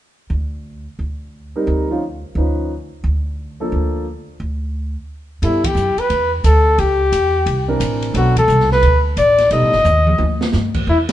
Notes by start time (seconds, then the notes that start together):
0.30 D2
0.99 D2
1.56 G3 C4 D#4 A#4
1.67 D2
1.90 F3 C#4 D#4 F4
2.35 D2 F3 C#4 D#4 B4
3.04 D2
3.60 F3 A#3 D4 A4
3.72 D2
4.40 D2
5.42 G2 G3 B3 E4 A4, kick, ride
5.64 G4, kick, ride
5.75 F#2, hi-hat pedal
5.97 B4, muted upright bass stroke, ride
6.10 E2, kick, ride
6.44 D2 A4, kick, hi-hat pedal, ride
6.78 C#2 G4, kick, ride
7.12 E2, kick, hi-hat pedal, ride
7.46 C2, kick, ride
7.68 E3 C4 D4 A#4
7.80 A1, kick, hi-hat pedal, ride
8.02 ride
8.14 B1 F#3 B3 D4 F#4 A4, kick, ride
8.36 A4, kick, ride
8.48 C2, hi-hat pedal
8.60 snare
8.71 B4, snare
8.83 D2, kick, ride
9.17 A1 D5, kick, hi-hat pedal, ride
9.38 snare, ride
9.51 B1 G3 B3 D#4 A4 D#5, kick, ride
9.62 A1
9.72 G1, snare
9.84 D#2, floor tom, hi-hat pedal
10.07 mid tom
10.18 D2, high tom
10.41 snare
10.52 G2, snare, hi-hat pedal
10.74 kick, crash
10.87 E2 E4, kick
11.09 snare, ride